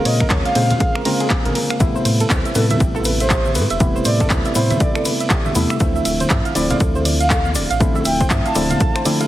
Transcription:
Already playing: C#3 G#3 A#3 C4 F4
0.05 A#2 C#5 D#5, open hi-hat, ride
0.20 A#4, finger snap, kick, closed hi-hat, high bongo, high conga
0.30 D#2 C#5, kick, clap, closed hi-hat
0.45 F5, closed hi-hat
0.55 A#2 C#3 G#3 A#3 C4 F4 C5, open hi-hat, ride, high bongo
0.70 F5, closed hi-hat, high conga, low conga
0.80 G#4, kick, closed hi-hat, high bongo
0.95 A#4, finger snap
1.05 C#3 G#3 A#3 C4 F4 A#5, open hi-hat, ride, high conga
1.20 G#4, closed hi-hat, high bongo
1.30 G#5, kick, clap, closed hi-hat
1.45 G#1 A#4, closed hi-hat, high bongo, high conga, low conga
1.55 A#4, open hi-hat, ride
1.70 F5, finger snap, closed hi-hat
1.79 A1 C3 G3 A3 B3 E4 G4, kick, closed hi-hat, high conga, shaker
1.95 C5, high bongo, shaker
2.05 A2 C5, open hi-hat, ride, shaker
2.20 A4, closed hi-hat, high conga, shaker
2.30 D2 C5, kick, clap, closed hi-hat, high bongo, shaker
2.45 E5, closed hi-hat, shaker
2.55 A2 C3 G3 A3 B3 E4 A4 B4, open hi-hat, ride, high bongo, shaker
2.70 A4 E5, closed hi-hat, high conga, low conga, shaker
2.80 A1 G4, kick, closed hi-hat, shaker
2.95 A4, high bongo, shaker
3.05 B4, open hi-hat, ride, high conga, shaker
3.20 C5 E5, closed hi-hat, high bongo, shaker
3.30 G4, kick, clap, closed hi-hat, shaker
3.45 E5, high conga, shaker
3.55 A2 B4, open hi-hat, ride, high bongo, shaker
3.70 E1 E5, closed hi-hat, shaker
3.80 C3 G3 A3 B3 E4 G4, kick, closed hi-hat, high bongo, high conga, shaker
3.95 C5, shaker
4.05 A2 C5 D5, open hi-hat, ride, shaker
4.20 A4, kick, closed hi-hat, high bongo, high conga, shaker
4.30 D2 C5, kick, clap, closed hi-hat, shaker
4.45 E5, closed hi-hat, high bongo, shaker
4.55 A2 C3 G3 A3 B3 E4 B4 C5, open hi-hat, ride, shaker
4.70 E5, closed hi-hat, high conga, low conga, shaker
4.80 G4 D5, kick, closed hi-hat, high bongo, shaker
4.95 A4 D5, finger snap, shaker
5.05 B4, open hi-hat, ride, high bongo, high conga, shaker
5.20 E5, closed hi-hat, shaker
5.30 G4, kick, clap, closed hi-hat, shaker
5.45 E5, high bongo, high conga, low conga, shaker
5.55 E2 C3 G3 A3 B3 E4 B4, open hi-hat, ride, shaker
5.70 E5, finger snap, closed hi-hat, high bongo, shaker
5.80 D2 D3 F3 A3 C4 E4 A4, kick, closed hi-hat, high conga, shaker
5.96 E5, shaker
6.05 D1 E5, open hi-hat, ride, high bongo, shaker
6.20 C5, closed hi-hat, high conga, shaker
6.30 G2 E5, kick, clap, closed hi-hat, high bongo, shaker
6.45 F5, closed hi-hat, shaker
6.55 D1 D3 F3 A3 C4 E4 D5, open hi-hat, ride, shaker
6.70 D5 F5, closed hi-hat, high bongo, high conga, low conga, shaker
6.80 D2 A4, kick, closed hi-hat, shaker
6.95 C5, high bongo, shaker
7.05 D5, open hi-hat, ride, high conga, shaker
7.20 F5, closed hi-hat, shaker
7.30 A4, kick, clap, closed hi-hat, high bongo, shaker
7.45 F5, high conga, shaker
7.55 D1 D5, open hi-hat, ride, high bongo, shaker
7.70 A1 F5, closed hi-hat, shaker
7.80 D3 F3 A3 C4 E4 A4, kick, closed hi-hat, high conga, shaker
7.95 E5, high bongo, shaker
8.05 D1 E5 G5, open hi-hat, ride, shaker
8.20 C5, kick, closed hi-hat, high bongo, high conga, shaker
8.30 G2 E5, kick, clap, closed hi-hat, shaker
8.45 F5 A5, closed hi-hat, shaker
8.55 D1 D3 F3 A3 C4 E4 D5, open hi-hat, ride, high bongo, shaker
8.70 F5, closed hi-hat, high conga, low conga, shaker
8.80 A4, kick, closed hi-hat, high bongo, shaker
8.96 C5, finger snap, closed hi-hat, shaker
9.05 D3 F3 A3 C4 E4 D5, open hi-hat, ride, high conga, shaker
9.20 F5, closed hi-hat, high bongo, shaker

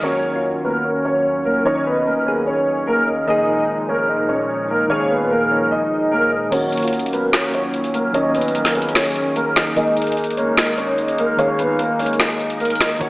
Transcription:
0.02 D#2 D#3 F#3 C#4 F#4 A#4 C#5
0.32 D#3 C#4 F4
0.64 A#3 A#4 B4
0.85 C#5
1.05 C#4 C#5
1.45 A#3 A#4
1.63 D#3 C#4 D#4 C#5 D#5
1.86 B3 B4
2.06 A#3 A#4
2.25 D#3 C#4 G#4 B4
2.47 C#4 C#5
2.87 A#3 A#4
3.07 D#5
3.27 A#2 D#3 F3 G#3 A#3 D#4 G#4 A#4 D#5
3.57 D#3 A#3 G#4
3.89 A#3 A#4 C#5
4.09 D#5
4.29 C#4 C#5
4.70 A#3 A#4
4.88 D#3 A#3 C#4 G#4 C#5 F5
5.10 B3 B4
5.31 A#3 A#4
5.49 D#3 A#3 D#4 C#5
5.71 D#4 D#5
6.12 A#3 A#4
6.32 D#5
6.50 D#3 F#3 A#3 C#4 F#4 A#4 C#5, closed hi-hat, crash
6.72 closed hi-hat
6.77 D#3, closed hi-hat
6.83 C#4 F4, closed hi-hat
6.88 closed hi-hat
6.93 closed hi-hat
6.99 closed hi-hat
7.06 closed hi-hat
7.13 A#3 A#4 B4, closed hi-hat
7.33 C#5, finger snap, snare, closed hi-hat
7.54 C#4 C#5, closed hi-hat
7.74 closed hi-hat
7.84 closed hi-hat
7.94 A#3 A#4, closed hi-hat
8.12 D#3 C#4 D#4 C#5 D#5, closed hi-hat
8.35 B3 B4, closed hi-hat
8.41 closed hi-hat
8.48 closed hi-hat
8.55 A#3 A#4, closed hi-hat
8.65 snare
8.73 D#3 C#4 G#4 B4, closed hi-hat
8.82 closed hi-hat
8.89 closed hi-hat
8.95 C#4 C#5, finger snap, snare, closed hi-hat
9.00 closed hi-hat
9.06 closed hi-hat
9.11 closed hi-hat
9.16 closed hi-hat
9.36 A#3 A#4, closed hi-hat
9.56 D#5, finger snap, snare, closed hi-hat
9.75 D#3 G#3 A#3 D#4 G#4 A#4 D#5, closed hi-hat
9.97 closed hi-hat
10.02 D#3, closed hi-hat
10.07 A#3 G#4, closed hi-hat
10.12 closed hi-hat
10.17 closed hi-hat
10.24 closed hi-hat
10.31 closed hi-hat
10.37 A#3 A#4 C#5, closed hi-hat
10.57 D#5, finger snap, snare, closed hi-hat
10.77 C#4 C#5, closed hi-hat
10.98 closed hi-hat
11.08 closed hi-hat
11.18 A#3 A#4, closed hi-hat
11.37 D#3 A#3 C#4 G#4 C#5 F5, closed hi-hat
11.59 B3 B4, closed hi-hat
11.79 A#3 A#4, closed hi-hat
11.98 D#3 A#3 D#4 C#5, closed hi-hat, open hi-hat
12.06 closed hi-hat
12.13 closed hi-hat
12.20 D#4 D#5, finger snap, snare, closed hi-hat
12.30 closed hi-hat
12.40 closed hi-hat
12.50 closed hi-hat
12.60 A#3 A#4, closed hi-hat
12.65 closed hi-hat
12.70 closed hi-hat
12.75 closed hi-hat
12.80 D#5, finger snap, snare, closed hi-hat
12.99 D#1 D#3 F#3 C#4 F#4 A#4 C#5, closed hi-hat

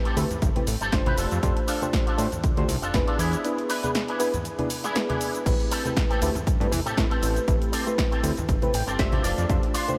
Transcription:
Already playing: A3 C4 E4 G4 B4
0.05 C4 G4 A4, closed hi-hat
0.17 D2 A3 C4 E4 G4 B4, open hi-hat, cabasa
0.31 closed hi-hat, low conga, cabasa
0.42 G1, muted clean electric guitar stroke, kick, closed hi-hat, cabasa
0.56 A3 C4 E4 G4 B4, closed hi-hat, high conga
0.67 A1, open hi-hat, cabasa
0.81 G1 C4 G4 A4, closed hi-hat, cabasa
0.92 G1 A3 D4 F4 G4 C5, kick, snare, closed hi-hat, cabasa
1.06 A1 C4 G4 B4, closed hi-hat, high conga
1.17 F1 D4 F4 A4, open hi-hat, cabasa
1.31 F2, closed hi-hat, cabasa
1.43 F2 A3 D4 F4 G4 C5, kick, closed hi-hat, cabasa
1.57 closed hi-hat
1.67 D4 F4 A4, open hi-hat, cabasa
1.81 A3 D4 F4 G4 C5, closed hi-hat, high conga, cabasa
1.93 kick, snare, closed hi-hat, cabasa
2.07 D4 F4 A4, closed hi-hat
2.18 A2 A3 D4 F4 G4 C5, open hi-hat, cabasa
2.32 closed hi-hat, low conga, cabasa
2.43 D2, muted clean electric guitar stroke, kick, closed hi-hat, cabasa
2.57 D2 A3 D4 F4 G4 C5, closed hi-hat
2.68 C2, open hi-hat, high conga, cabasa
2.82 F1 D4 F4 A4, closed hi-hat, cabasa
2.94 F1 B3 D4 E4 G#4 B4, kick, snare, closed hi-hat, cabasa
3.07 D4 F4 A4, closed hi-hat
3.19 E2 D4 E4 G#4, open hi-hat, cabasa
3.33 closed hi-hat, cabasa
3.44 B3 D4 E4 G#4 B4, closed hi-hat, cabasa
3.58 closed hi-hat
3.69 D4 E4 B4, open hi-hat, cabasa
3.83 B3 D4 E4 G#4 B4, closed hi-hat, high conga, cabasa
3.95 snare, closed hi-hat, cabasa
4.08 D4 E4 G#4, closed hi-hat
4.19 B3 D4 E4 G#4 B4, open hi-hat, cabasa
4.34 closed hi-hat, low conga, cabasa
4.45 muted clean electric guitar stroke, closed hi-hat, cabasa
4.58 B3 D4 E4 G#4 B4, closed hi-hat, high conga
4.70 open hi-hat, cabasa
4.84 D4 E4 G#4, snare, closed hi-hat, cabasa
4.95 B3 D4 E4 G#4 B4, snare, closed hi-hat, cabasa
5.09 D4 E4 G#4, closed hi-hat, high conga
5.21 open hi-hat, cabasa
5.35 closed hi-hat, cabasa
5.46 A1 A3 C4 E4 G4 B4, kick, closed hi-hat, crash, cabasa
5.60 closed hi-hat
5.71 C4 G4 A4, open hi-hat, cabasa
5.85 A3 C4 E4 G4 B4, closed hi-hat, high conga, cabasa
5.96 kick, snare, closed hi-hat, cabasa
6.10 C4 G4 A4, closed hi-hat, cabasa
6.22 D2 A3 C4 E4 G4 B4, open hi-hat, cabasa
6.35 closed hi-hat, low conga, cabasa
6.46 G2, muted clean electric guitar stroke, kick, closed hi-hat, cabasa
6.60 G2 A3 C4 E4 G4 B4, closed hi-hat
6.72 E2, open hi-hat, high conga, cabasa
6.85 A2 C4 G4 A4, closed hi-hat, cabasa
6.97 A2 A3 C4 E4 G4 B4, kick, snare, closed hi-hat, cabasa
7.10 C4 G4 A4, closed hi-hat
7.22 A1, open hi-hat, cabasa
7.36 closed hi-hat, cabasa
7.48 A1 A3 C4 E4 G4 B4, kick, closed hi-hat, cabasa
7.62 closed hi-hat, cabasa
7.72 C4 G4 A4, open hi-hat, cabasa
7.86 A3 C4 E4 G4 B4, closed hi-hat, cabasa
7.98 kick, snare, closed hi-hat, cabasa
8.11 C4 G4 A4, closed hi-hat, cabasa
8.23 D2 A3 C4 E4 G4 B4, open hi-hat, cabasa
8.37 closed hi-hat, low conga, cabasa
8.48 G1, muted clean electric guitar stroke, kick, closed hi-hat, cabasa
8.62 A3 C4 E4 G4 B4, closed hi-hat, high conga, cabasa
8.74 A1 G5, open hi-hat, cabasa
8.87 G1 C4 G4 A4, closed hi-hat, cabasa
8.99 G1 A3 D4 F4 G4 C5 E5, kick, snare, closed hi-hat, cabasa
9.12 A1 C4 G4 A4, closed hi-hat, high conga
9.23 F1 D4 F4 A4 D5, open hi-hat, cabasa
9.38 F2, closed hi-hat, cabasa
9.49 F2 A3 D4 F4 G4 C5, kick, closed hi-hat, cabasa
9.63 closed hi-hat
9.74 D4 F4 C5, open hi-hat, cabasa
9.88 A3 D4 F4 G4 C5, closed hi-hat, high conga, cabasa

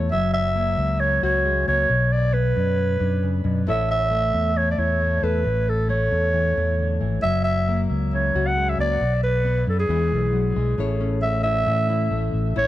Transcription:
Already playing: E2 A2
0.12 F#1 F#3 E5
0.33 E5
0.55 A#3
0.77 C#2
1.00 C#3 C#5
1.23 C#2 F#4 C#5
1.45 G#3
1.68 C#2 A#3 C#5
1.90 B1 B2
2.12 D5
2.34 B3 B4
2.57 F#2
2.78 muted nylon-string guitar stroke
3.00 F#2 D4
3.23 C#3
3.44 F#2 B2
3.66 A1 A2 E4 A4 C#5 E5, muted nylon-string guitar stroke
3.91 E5
4.11 A3
4.34 E2
4.56 E3 C#5
4.71 D5
4.78 E2 E4 C#5
5.00 A3
5.23 E2 A4 B4
5.44 A1 A2
5.69 A4
5.89 A3 C#5
6.11 E2
6.34 E3
6.57 E2 E4
6.79 D3
7.01 G#1 E3
7.23 F#1 F#3 E5
7.44 E5
7.69 A#3
7.90 C#2
8.13 C#3 C#5
8.35 C#2 F#4
8.47 F#5
8.57 G#3
8.69 E5
8.79 C#2 A#3 D5
9.00 B1, muted nylon-string guitar stroke
9.23 B4
9.45 B3
9.67 F#2 A4
9.80 G#4
9.89 E2 E3 G#3 E4, muted nylon-string guitar stroke
10.12 B1
10.33 F#3
10.56 B1 G#3
10.78 A1 A2 A3 C#4 E4 C#5
11.01 C#4
11.22 A3 E5
11.43 E4 E5
11.66 A2 E3 C#4
11.89 E4
12.11 A1 A3
12.33 A1
12.56 A1 A2 E4 C#5

